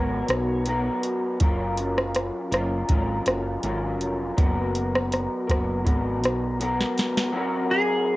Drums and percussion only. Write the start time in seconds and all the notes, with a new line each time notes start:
0.28 cross-stick, closed hi-hat
0.66 closed hi-hat
1.03 closed hi-hat
1.40 kick, closed hi-hat
1.78 closed hi-hat
1.98 cross-stick
2.15 cross-stick, closed hi-hat
2.52 cross-stick, closed hi-hat
2.89 kick, closed hi-hat
3.26 cross-stick, closed hi-hat
3.63 closed hi-hat
4.01 closed hi-hat
4.38 kick, closed hi-hat
4.75 closed hi-hat
4.95 cross-stick
5.12 cross-stick, closed hi-hat
5.49 kick, cross-stick, closed hi-hat
5.87 kick, closed hi-hat
6.24 cross-stick, closed hi-hat
6.61 closed hi-hat
6.81 snare
6.98 snare, closed hi-hat
7.17 snare